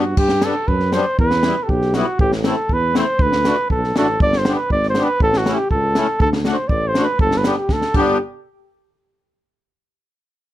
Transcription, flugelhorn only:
Already playing: F#4
0.18 G4
0.44 A4
0.68 B4
0.93 C5
1.20 B4
1.63 G4 A4
1.95 F#4
2.21 G4
2.47 A4
2.73 B4
2.98 C5
3.22 B4
3.71 A4
3.98 A4
4.23 D5
4.39 C5
4.55 B4
4.72 D5
4.90 C5
5.04 B4
5.23 A4
5.38 F#4
5.55 G4
5.71 A4
6.22 A4
6.52 C5
6.69 D5
6.88 C5
7.05 B4
7.21 A4
7.38 B4
7.56 G4
7.73 A4
7.98 G4

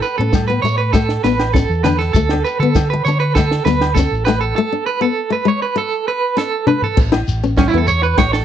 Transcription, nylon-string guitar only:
0.21 C#4
0.50 B3
0.65 A3
0.95 A3
1.24 B3
1.56 C#4
1.86 D4
2.16 A3
2.33 D4
2.63 B3
2.93 muted nylon-string guitar stroke
3.08 D4
3.38 A3
3.68 B3
3.99 C#4
4.28 A3
4.58 A3
4.72 D4
5.01 B3
5.30 A3
5.45 G#3
5.76 muted nylon-string guitar stroke
6.37 C#4
6.67 D4
6.97 muted nylon-string guitar stroke
7.12 E4
7.44 C#4
7.74 B3
8.18 A3

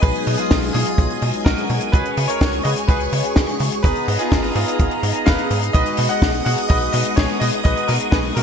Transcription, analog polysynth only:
0.03 F#3 G#3 B3 D#4
0.74 F#3 G#3 B3 D#4
1.94 G#3 C#4 F#4 G#4
2.65 G#3 C#4 F#4 G#4
3.84 B3 D#4 G#4 A#5
4.55 B3 D#4 G#4 A#5
5.75 G#3 B3 D#4 F#4
6.46 G#3 B3 D#4 F#4
7.65 G#3 B3 D#4 F#4
8.36 G#3 B3 D#4 F#4

